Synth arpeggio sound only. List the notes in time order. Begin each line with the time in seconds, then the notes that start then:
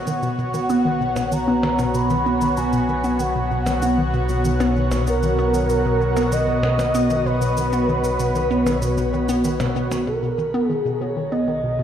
0.07 D#3
0.23 B2
0.38 B2
0.54 D#3
0.70 B3
0.85 D#3
1.01 B2
1.16 B2
1.32 D#3
1.48 B3
1.63 D#3
1.79 B2
1.95 B2
2.10 D#3
2.26 B3
2.42 D#3
2.58 B2
2.73 B2
2.89 D#3
3.04 B3
3.20 D#3
3.36 B2
3.51 B2
3.67 D#3
3.83 B3
3.98 D#3
4.14 B2
4.29 B2
4.45 D#3
4.61 B3
4.77 D#3
4.92 B2
5.08 B2
5.23 D#3
5.39 B3
5.54 D#3
5.70 B2
5.85 B2
6.01 D#3
6.16 B3
6.32 D#3
6.47 B2
6.63 B2
6.79 D#3
6.95 B3
7.10 D#3
7.26 B2
7.41 B2
7.57 D#3
7.73 B3
7.88 D#3
8.04 B2
8.20 B2
8.35 D#3
8.51 B3
8.66 D#3
8.82 B2
8.98 B2
9.13 D#3
9.29 B3
9.45 D#3
9.60 B2
9.76 B2
9.92 D#3
10.07 B2
10.23 B2
10.38 D#3
10.54 B3
10.70 D#3
10.85 B2
11.01 B2
11.17 D#3
11.32 B3
11.48 D#3
11.64 B2
11.79 B2